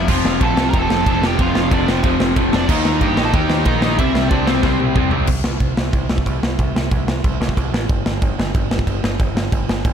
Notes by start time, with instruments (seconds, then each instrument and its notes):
0.08 picked electric bass F1, distorted electric guitar F2 C3 F3, overdriven electric guitar F4 F5, kick, crash
0.25 picked electric bass F1, snare
0.41 picked electric bass A#1, distorted electric guitar F2 C3 F3, overdriven electric guitar A4, kick, ride
0.45 overdriven electric guitar A5
0.56 picked electric bass C2, distorted electric guitar F2 C3 F3, snare
0.69 overdriven electric guitar A#4 A#5
0.73 picked electric bass F1, distorted electric guitar F2 C3 F3, kick, ride
0.78 overdriven electric guitar A4 A5
0.89 picked electric bass F1, snare
1.05 picked electric bass F1, distorted electric guitar F2 C3 F3, kick, ride
1.10 overdriven electric guitar A4 A5
1.21 distorted electric guitar F2 C3 F3, snare
1.26 overdriven electric guitar G4 G5
1.38 picked electric bass F1, distorted electric guitar F2 C3 F3, overdriven electric guitar F4, kick, ride
1.43 overdriven electric guitar F5
1.55 picked electric bass F1, snare
1.70 picked electric bass F1, distorted electric guitar F2 C3 F3, overdriven electric guitar D4, kick, ride
1.74 overdriven electric guitar D5
1.87 distorted electric guitar F2 C3 F3, overdriven electric guitar C4 C5, snare
2.03 picked electric bass F1, distorted electric guitar F2 C3 F3, kick, ride
2.20 picked electric bass F1, snare
2.36 picked electric bass F1, distorted electric guitar F2 C3 F3, kick, ride
2.53 picked electric bass F1, distorted electric guitar F2 C3 F3, overdriven electric guitar D4 D5, snare
2.68 picked electric bass D#2, distorted electric guitar D#3 A#3 D#4, overdriven electric guitar D#4 D#5, kick, crash
2.85 picked electric bass D#2, snare
3.01 picked electric bass G2, distorted electric guitar D#3 A#3 D#4, overdriven electric guitar G4 G5, kick, ride
3.17 picked electric bass A#1, distorted electric guitar D#3 A#3 D#4, snare
3.24 overdriven electric guitar A4 A5
3.33 picked electric bass D#2, distorted electric guitar D#3 A#3 D#4, overdriven electric guitar G4 G5, kick, ride
3.49 picked electric bass D#2, snare
3.65 picked electric bass A#1, distorted electric guitar D#3 A#3 D#4, overdriven electric guitar D#4 D#5, kick, ride
3.82 distorted electric guitar D#3 A#3 D#4, snare
3.98 picked electric bass C2, distorted electric guitar C3 G3 C4, overdriven electric guitar E4 E5, kick, ride
4.14 picked electric bass C2, snare
4.29 picked electric bass C2, distorted electric guitar C3 G3 C4, overdriven electric guitar D4 D5, kick, ride
4.46 distorted electric guitar C3 G3 C4, overdriven electric guitar C4 C5, snare
4.62 picked electric bass C2, distorted electric guitar C3 G3 C4, kick, snare
4.80 picked electric bass C2, high tom
4.95 picked electric bass C2, distorted electric guitar C3 G3 C4, kick, mid tom
5.11 picked electric bass C2, distorted electric guitar C3 G3 C4, floor tom
5.27 picked electric bass C2, kick, crash
5.44 picked electric bass C2, snare
5.60 picked electric bass C2, kick, crash
5.77 picked electric bass C2, snare
5.93 picked electric bass C2, kick, crash
6.09 picked electric bass C2, snare
6.18 kick
6.26 picked electric bass C2, kick, crash
6.43 picked electric bass C2, snare
6.59 picked electric bass C2, kick, crash
6.75 picked electric bass C2, snare
6.91 picked electric bass C2, kick, crash
7.07 picked electric bass C2, snare
7.24 picked electric bass C2, kick, crash
7.40 picked electric bass C2, snare
7.49 kick
7.57 picked electric bass C2, kick, crash
7.73 picked electric bass A1, snare
7.89 picked electric bass G1, kick, crash
8.06 picked electric bass G1, snare
8.22 picked electric bass G1, kick, crash
8.38 picked electric bass G1, snare
8.55 picked electric bass G1, kick, crash
8.70 picked electric bass G1, snare
8.79 kick
8.87 picked electric bass G1, kick, crash
9.04 picked electric bass G1, snare
9.20 picked electric bass G1, kick, crash
9.35 picked electric bass G1, snare
9.52 picked electric bass G1, kick, crash
9.69 picked electric bass G1, snare
9.85 picked electric bass G1, kick, crash